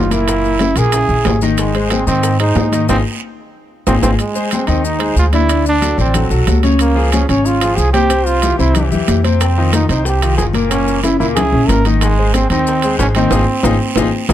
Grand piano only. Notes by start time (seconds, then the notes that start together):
0.10 A#2 A#3 A#4
0.27 A#2 A#3 A#4
0.59 C#3 C#4 E4
0.76 A#2 A#3 A#4
0.92 C#3 C#4 E4
1.09 C#3 C#4 E4
1.42 D#3 D#4 D#5
1.74 G#3 G#4 C5
2.07 D#3 D#4 D#5
2.40 G#3 G#4 C5
2.72 D#3 D#4 D#5
2.89 D#4 F4 G#4
3.87 D#4 F4 G#4
4.02 D#4 F4 G#4
4.35 G#3 G#4 C5
4.67 D#3 D#4 D#5
4.99 G#3 G#4 C5
5.33 D3 D4 D5
5.48 D3 D4 D5
5.82 F#3 F#4 A4
5.98 D3 D4 D5
6.14 F#3 F#4 A4
6.30 F#3 F#4 A4
6.63 C#3 C#4 C#5
6.95 F3 F4 G#4
7.29 C#3 C#4 C#5
7.61 F3 F4 G#4
7.94 C3 C4 C5
8.10 C3 C4 C5
8.42 E3 E4 G4
8.59 C3 C4 C5
8.74 E3 E4 G4
8.91 E3 E4 G4
9.24 C3 C4 C5
9.58 D#3 D#4 F4
9.90 C3 C4 C5
10.22 D#3 D#4 F4
10.54 A#2 A#3 A#4
10.71 A#2 A#3 A#4
11.04 C#3 C#4 E4
11.20 A#2 A#3 A#4
11.36 C#3 C#4 E4
11.53 C#3 C#4 E4
11.85 D#3 D#4 D#5
12.18 G#3 G#4 C5
12.52 D#3 D#4 D#5
12.84 G#3 G#4 C5
13.16 D#3 D#4 D#5
13.32 D#4 F4 G#4
13.64 D#4 F4 G#4
13.97 D#4 F4 G#4
14.29 D#4 F4 G#4